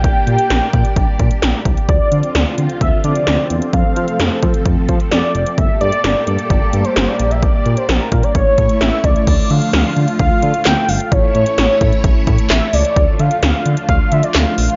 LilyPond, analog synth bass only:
\new Staff \with { instrumentName = "Analog synth bass" } { \clef bass \time 4/4 \key d \minor \tempo 4 = 130 bes,,16 r16 bes,16 r16 bes,,16 r16 bes,16 r16 bes,,16 r16 bes,16 r16 bes,,16 r16 c,16 r16 | d,16 r16 d16 r16 d,16 r16 d16 r16 d,16 r16 d16 r16 d,16 r16 e,16 r16 | f,16 r16 f16 r16 f,16 r16 f16 r16 f,16 r16 f16 r16 f,16 r16 f,,16 r16 | g,,16 r16 g,16 r16 g,,16 r16 g,16 r16 g,,16 r16 g,16 r16 g,,16 r16 bes,,8~ |
bes,,16 r16 bes,16 r16 bes,,16 r16 bes,16 r16 a,,16 r16 a,16 r16 a,,16 r16 cis,16 r16 | d,16 r16 d16 r16 d,16 r16 d16 r16 d,16 r16 d16 r16 d,16 r16 g,,16 r16 | a,,16 r16 a,16 r16 a,,16 r16 a,16 r16 a,,16 r16 a,16 r16 a,,16 r16 cis,16 r16 | d,16 r16 d16 r16 d,16 r16 d16 r16 d,16 r16 d16 r16 d,16 r16 bes,,16 r16 | }